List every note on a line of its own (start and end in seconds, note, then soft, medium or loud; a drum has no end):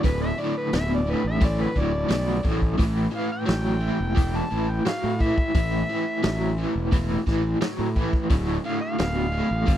0.03 0.31 D1 loud
0.03 0.35 D2 medium
0.03 0.35 A2 medium
0.03 0.20 B4 loud
0.03 kick loud
0.03 open hi-hat medium
0.21 0.41 E5 loud
0.38 0.69 D2 medium
0.38 0.69 A2 medium
0.38 0.55 D5 medium
0.57 0.73 B4 medium
0.73 1.13 D1 medium
0.73 1.04 D2 medium
0.73 1.04 B2 loud
0.73 0.90 E5 loud
0.73 snare loud
0.73 open hi-hat medium
0.95 1.13 D5 medium
1.07 1.38 D2 medium
1.07 1.38 A2 medium
1.11 1.25 B4 medium
1.24 1.65 A1 medium
1.24 1.42 E5 medium
1.41 1.72 D2 medium
1.41 1.73 A2 medium
1.41 kick loud
1.41 open hi-hat medium
1.45 1.63 D5 loud
1.62 1.80 B4 medium
1.76 2.03 D1 medium
1.76 2.07 D2 medium
1.76 2.07 A2 medium
1.76 2.44 D5 loud
1.76 kick medium
2.09 2.41 B1 medium
2.09 2.41 D2 medium
2.09 2.41 B2 medium
2.09 snare loud
2.09 open hi-hat medium
2.43 2.76 A1 medium
2.43 2.75 D2 medium
2.43 2.75 A2 medium
2.43 kick medium
2.62 kick medium
2.78 3.06 A1 loud
2.78 3.10 A2 medium
2.78 3.10 E3 medium
2.78 kick loud
2.78 open hi-hat medium
3.12 3.44 A2 medium
3.12 3.44 E3 medium
3.16 3.31 F5 loud
3.33 4.38 G5 loud
3.46 3.89 A1 medium
3.46 3.78 A2 medium
3.46 3.78 F#3 medium
3.46 snare loud
3.46 open hi-hat medium
3.81 4.13 A2 medium
3.81 4.13 E3 medium
4.00 4.40 E1 medium
4.16 4.48 A2 medium
4.16 4.48 E3 medium
4.16 kick loud
4.16 open hi-hat medium
4.37 4.72 A5 medium
4.51 4.79 A1 medium
4.51 4.82 A2 medium
4.51 4.83 E3 medium
4.70 4.86 G5 medium
4.85 5.17 A2 medium
4.85 5.17 F#3 medium
4.85 5.20 F5 loud
4.85 snare loud
4.85 open hi-hat medium
5.04 5.30 A2 medium
5.19 5.51 A2 medium
5.19 5.51 E3 medium
5.19 6.54 E5 loud
5.19 kick medium
5.38 kick medium
5.55 5.82 A1 loud
5.55 5.86 A2 medium
5.55 5.86 E3 medium
5.55 kick loud
5.55 open hi-hat medium
5.89 6.20 A2 medium
5.89 6.21 E3 medium
6.23 6.64 A1 medium
6.23 6.54 A2 medium
6.23 6.55 F#3 loud
6.23 snare loud
6.23 open hi-hat medium
6.58 6.89 A2 medium
6.58 6.89 E3 medium
6.75 7.16 E1 medium
6.92 7.23 A2 medium
6.92 7.24 E3 loud
6.92 kick loud
6.92 open hi-hat medium
7.27 7.54 A1 medium
7.27 7.58 A2 medium
7.27 7.58 E3 medium
7.27 kick medium
7.27 snare soft
7.61 7.92 A2 medium
7.61 7.92 F#3 medium
7.61 snare loud
7.61 open hi-hat medium
7.79 8.06 A2 medium
7.96 8.27 A2 medium
7.96 8.27 E3 medium
7.96 kick medium
8.13 kick medium
8.30 8.57 D1 loud
8.30 8.61 D2 medium
8.30 8.61 A2 loud
8.30 kick loud
8.30 open hi-hat medium
8.64 8.95 D2 medium
8.64 8.96 A2 medium
8.64 8.80 F5 medium
8.81 9.78 F5 loud
8.99 9.40 D1 medium
8.99 9.30 D2 medium
8.99 9.30 B2 medium
8.99 snare loud
8.99 open hi-hat medium
9.32 9.64 D2 medium
9.32 9.64 A2 medium
9.51 9.64 A1 medium
9.66 9.78 G1 loud
9.66 9.78 G2 medium
9.66 9.78 D3 loud
9.66 kick loud
9.66 open hi-hat medium